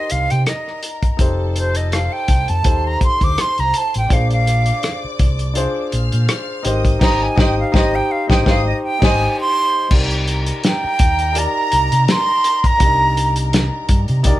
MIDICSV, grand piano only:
0, 0, Header, 1, 2, 480
1, 0, Start_track
1, 0, Key_signature, -3, "minor"
1, 0, Tempo, 725514
1, 789, Time_signature, 4, 2, 24, 8
1, 9525, End_track
2, 0, Start_track
2, 0, Title_t, "Grand piano"
2, 0, Program_c, 0, 0
2, 0, Control_c, 0, 64, 127
2, 0, Note_on_c, 0, 63, 69
2, 0, Note_on_c, 0, 67, 63
2, 0, Note_on_c, 0, 70, 63
2, 0, Note_on_c, 0, 74, 87
2, 0, Note_on_c, 0, 75, 79
2, 411, Note_off_c, 0, 63, 0
2, 414, Note_off_c, 0, 67, 0
2, 419, Note_off_c, 0, 70, 0
2, 423, Note_off_c, 0, 75, 0
2, 775, Note_on_c, 0, 63, 80
2, 784, Note_on_c, 0, 67, 69
2, 790, Note_on_c, 0, 69, 72
2, 797, Note_on_c, 0, 72, 90
2, 799, Control_c, 0, 64, 0
2, 806, Note_off_c, 0, 74, 0
2, 898, Control_c, 0, 64, 127
2, 1375, Note_off_c, 0, 63, 0
2, 1380, Note_off_c, 0, 67, 0
2, 1383, Note_off_c, 0, 69, 0
2, 1387, Note_off_c, 0, 72, 0
2, 1737, Note_on_c, 0, 63, 68
2, 1745, Note_on_c, 0, 67, 64
2, 1752, Note_on_c, 0, 69, 63
2, 1757, Note_on_c, 0, 72, 79
2, 2337, Note_off_c, 0, 63, 0
2, 2342, Note_off_c, 0, 67, 0
2, 2345, Note_off_c, 0, 69, 0
2, 2348, Note_off_c, 0, 72, 0
2, 2705, Note_on_c, 0, 62, 74
2, 2712, Note_on_c, 0, 65, 67
2, 2719, Note_on_c, 0, 68, 66
2, 2723, Control_c, 0, 64, 0
2, 2726, Note_on_c, 0, 72, 74
2, 2828, Control_c, 0, 64, 127
2, 3302, Note_off_c, 0, 62, 0
2, 3306, Note_off_c, 0, 65, 0
2, 3309, Note_off_c, 0, 68, 0
2, 3313, Note_off_c, 0, 72, 0
2, 3663, Note_on_c, 0, 62, 81
2, 3672, Note_on_c, 0, 65, 79
2, 3679, Note_on_c, 0, 68, 84
2, 3687, Note_on_c, 0, 72, 95
2, 4262, Note_off_c, 0, 62, 0
2, 4267, Note_off_c, 0, 65, 0
2, 4270, Note_off_c, 0, 68, 0
2, 4274, Note_off_c, 0, 72, 0
2, 4385, Note_on_c, 0, 63, 91
2, 4392, Note_on_c, 0, 67, 83
2, 4400, Note_on_c, 0, 70, 80
2, 4405, Control_c, 0, 64, 0
2, 4408, Note_on_c, 0, 72, 97
2, 4516, Control_c, 0, 64, 127
2, 4616, Note_off_c, 0, 63, 0
2, 4624, Note_off_c, 0, 67, 0
2, 4626, Note_on_c, 0, 63, 100
2, 4634, Note_on_c, 0, 67, 95
2, 4639, Note_off_c, 0, 70, 0
2, 4640, Note_off_c, 0, 72, 0
2, 4650, Note_on_c, 0, 72, 95
2, 4797, Note_off_c, 0, 63, 0
2, 4802, Note_off_c, 0, 67, 0
2, 4811, Note_off_c, 0, 72, 0
2, 4868, Note_on_c, 0, 63, 100
2, 4875, Note_on_c, 0, 67, 101
2, 4893, Note_on_c, 0, 72, 93
2, 5039, Note_off_c, 0, 63, 0
2, 5042, Note_off_c, 0, 67, 0
2, 5053, Note_off_c, 0, 72, 0
2, 5107, Note_on_c, 0, 63, 101
2, 5115, Note_on_c, 0, 67, 103
2, 5131, Note_on_c, 0, 72, 94
2, 5278, Note_off_c, 0, 63, 0
2, 5282, Note_off_c, 0, 67, 0
2, 5291, Note_off_c, 0, 72, 0
2, 5473, Note_on_c, 0, 63, 94
2, 5481, Note_on_c, 0, 67, 98
2, 5497, Note_on_c, 0, 72, 92
2, 5570, Note_off_c, 0, 63, 0
2, 5578, Note_off_c, 0, 67, 0
2, 5580, Note_on_c, 0, 63, 100
2, 5587, Note_off_c, 0, 72, 0
2, 5589, Note_on_c, 0, 67, 101
2, 5605, Note_on_c, 0, 72, 97
2, 5754, Note_off_c, 0, 63, 0
2, 5759, Note_off_c, 0, 67, 0
2, 5768, Note_off_c, 0, 72, 0
2, 5950, Note_on_c, 0, 63, 95
2, 5958, Note_on_c, 0, 67, 96
2, 5973, Note_on_c, 0, 72, 104
2, 6117, Note_off_c, 0, 63, 0
2, 6121, Note_off_c, 0, 67, 0
2, 6130, Note_off_c, 0, 72, 0
2, 6542, Note_on_c, 0, 63, 71
2, 6551, Note_on_c, 0, 67, 69
2, 6556, Note_on_c, 0, 70, 64
2, 6565, Control_c, 0, 64, 0
2, 6565, Note_on_c, 0, 74, 80
2, 6698, Control_c, 0, 64, 127
2, 7140, Note_off_c, 0, 63, 0
2, 7145, Note_off_c, 0, 67, 0
2, 7148, Note_off_c, 0, 70, 0
2, 7152, Note_off_c, 0, 74, 0
2, 7492, Note_on_c, 0, 63, 75
2, 7499, Note_on_c, 0, 67, 66
2, 7508, Note_on_c, 0, 70, 72
2, 7515, Note_on_c, 0, 74, 89
2, 8094, Note_off_c, 0, 63, 0
2, 8097, Note_off_c, 0, 67, 0
2, 8102, Note_off_c, 0, 70, 0
2, 8105, Note_off_c, 0, 74, 0
2, 8454, Note_on_c, 0, 62, 60
2, 8462, Note_on_c, 0, 67, 66
2, 8470, Note_on_c, 0, 70, 62
2, 8477, Note_on_c, 0, 74, 79
2, 8498, Note_on_c, 0, 63, 75
2, 8510, Note_off_c, 0, 62, 0
2, 9057, Note_off_c, 0, 67, 0
2, 9061, Note_off_c, 0, 70, 0
2, 9064, Note_off_c, 0, 74, 0
2, 9075, Note_off_c, 0, 63, 0
2, 9416, Note_on_c, 0, 63, 92
2, 9424, Note_on_c, 0, 67, 79
2, 9429, Note_on_c, 0, 70, 79
2, 9439, Note_on_c, 0, 74, 105
2, 9525, Note_off_c, 0, 63, 0
2, 9525, Note_off_c, 0, 67, 0
2, 9525, Note_off_c, 0, 70, 0
2, 9525, Note_off_c, 0, 74, 0
2, 9525, End_track
0, 0, End_of_file